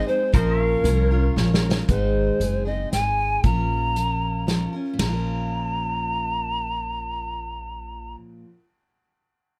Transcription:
Already playing: C4 D#4 G#4 C5 D#5
0.06 G#3 C4 D#4 G#4 C5
0.32 A#1 A#2 F3 C#4 F4 A#4 C5, kick, closed hi-hat
0.37 D#5
0.56 C#5
0.62 F5
0.84 C2 F3 C#4 F4 A#4 C#5, closed hi-hat
1.11 C#4 F4 A#4 F5
1.36 A#1 F3 C#4 F4 A#4 C#5 A#5, snare
1.54 snare
1.71 snare
1.88 G#1 G#2 D#3 G#3 C4 D#4 G#4 C5, kick, closed hi-hat
2.40 F#1 G#3 C4 D#4 G#4, closed hi-hat
2.65 G#3 C4 D#4 G#4 D#5
2.92 G#1 G#3 C4 D#4 G#4 G#5, snare, closed hi-hat
3.43 A#1 A#2 F3 C#4 F4 A#4 A#5, kick, closed hi-hat
3.95 F3 C#4 F4 A#4, closed hi-hat
4.47 F3 C#4 F4 A#4, snare, closed hi-hat
4.73 C#4 F4 A#4
4.93 A#2
4.99 A#1 F3 A#5, snare, ride bell
5.04 C#4
5.08 F4
5.12 A#4

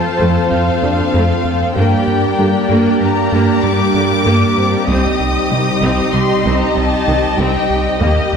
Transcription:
Already playing: F3 C4 F4 A4 C5 F5 A5
0.19 F2 A3
0.50 F2 F3 F5
0.82 F2 C3 D4 D5
1.13 F2 A3
1.45 F2
1.75 G2 G3 A#3 D4 G4 A#4 D5 F5 G5
2.07 G2
2.38 G2 D3 G3
2.70 G2 A#3
3.01 G2 G3 A#5
3.32 G2 A#3
3.63 G2 G3 D6
3.94 G2 D3
4.25 G2 A#3
4.57 G2 C4 C5
4.88 C2 C4 D#4 D#5 D#6
5.20 C2
5.51 C2 C3 D#3
5.82 C2 C4
6.13 C2 C3 G3 C6
6.45 C2 C4
6.61 A#5
6.76 C2 G3 A5
7.07 C2 D#3
7.38 C2 C4 G5
7.70 C2
8.01 D#2 G3 A#3 G4 D#5 F5
8.33 D#2

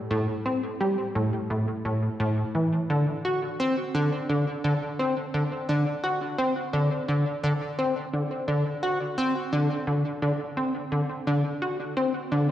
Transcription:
0.11 A2
0.46 C4
0.80 G3
1.15 A2
1.50 A2
1.85 A2
2.20 A2
2.55 E3
2.90 D3
3.25 F#4
3.60 C4
3.94 D3
4.29 D3
4.64 D3
4.99 C4
5.34 D3
5.69 D3
6.04 F#4
6.39 C4
6.73 D3
7.08 D3
7.43 D3
7.78 C4
8.13 D3
8.48 D3
8.83 F#4
9.18 C4
9.52 D3
9.87 D3
10.22 D3
10.57 C4
10.92 D3
11.27 D3
11.62 F#4
11.97 C4
12.32 D3

